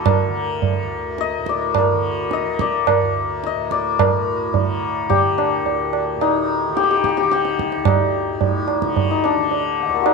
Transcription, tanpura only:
0.00 0.82 D2 medium
0.00 1.38 A2 medium
0.00 0.28 D3 medium
0.28 1.92 D3 medium
0.83 3.00 D2 medium
1.38 3.54 A2 medium
1.92 2.45 D3 medium
2.45 4.54 D3 medium
3.01 5.62 D2 medium
3.55 4.00 A2 medium
4.00 6.16 A2 medium
4.54 5.07 D3 medium
5.07 6.69 D3 medium
5.63 7.76 D2 medium
6.16 8.29 A2 medium
6.69 7.23 D3 medium
7.23 8.83 D3 medium
7.76 9.87 D2 medium
8.29 10.14 A2 medium
8.83 9.36 D3 medium
9.36 10.14 D3 medium
9.87 10.14 D2 medium

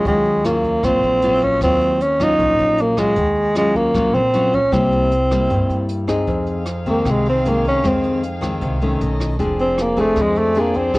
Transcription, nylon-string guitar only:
0.00 0.41 F#3 medium
0.00 0.41 C#4 soft
0.00 0.41 F4 medium
0.06 0.81 D#3 soft
0.45 0.80 F#3 soft
0.45 0.80 C#4 medium
0.45 0.81 F4 medium
0.84 1.59 A#2 soft
0.84 1.19 F#3 soft
0.84 1.20 F4 medium
1.23 1.58 F#3 medium
1.23 1.58 C#4 soft
1.23 1.59 F4 medium
1.63 2.38 D#3 soft
1.63 2.01 F#3 medium
1.63 2.01 F4 soft
2.20 2.94 F#3 medium
2.20 2.95 C#4 medium
2.20 2.95 F4 medium
2.39 3.15 A#2 soft
2.98 3.14 F#3 medium
2.98 3.14 C#4 medium
2.98 3.14 F4 medium
3.17 3.93 D#3 soft
3.57 3.92 F#3 medium
3.57 3.92 C#4 medium
3.57 3.92 F4 medium
3.95 4.71 A#2 soft
3.95 4.20 F#3 medium
3.95 4.20 C#4 soft
3.95 4.20 F4 medium
4.34 4.59 F#3 medium
4.34 4.59 C#4 medium
4.34 4.59 F4 medium
4.72 5.48 C3 soft
4.72 5.11 G3 soft
4.72 5.11 A#3 medium
4.72 5.11 E4 medium
5.31 6.06 G3 soft
5.31 6.06 A#3 medium
5.31 6.06 E4 medium
5.49 6.26 G2 soft
6.07 6.63 C4 soft
6.07 6.63 D#4 soft
6.07 6.64 G#4 medium
6.28 7.04 F2 soft
6.86 7.41 D#3 medium
6.86 7.42 G#3 medium
6.86 7.42 C4 medium
7.06 7.81 C3 soft
7.45 7.81 D#3 soft
7.45 7.81 G#3 soft
7.45 7.81 C4 medium
7.84 8.59 F2 soft
7.84 8.22 D#3 soft
7.84 8.22 G#3 soft
7.84 8.23 C4 medium
8.41 8.77 D#3 medium
8.41 8.77 G#3 soft
8.41 8.78 C4 medium
8.62 8.98 C3 soft
8.82 9.36 D#3 medium
8.82 9.37 A3 medium
8.82 9.37 C#4 medium
9.39 10.15 F3 soft
9.39 9.94 C4 soft
9.39 9.94 D4 medium
9.39 9.95 G#4 medium
9.97 10.52 C4 medium
9.97 10.52 D4 soft
9.97 10.53 G#4 medium
10.17 10.93 F3 soft
10.56 10.91 C4 soft
10.56 10.92 D4 soft
10.56 10.92 G#4 medium
10.94 10.99 F3 soft
10.94 10.99 C4 soft
10.94 10.99 D4 soft
10.94 10.99 G#4 medium

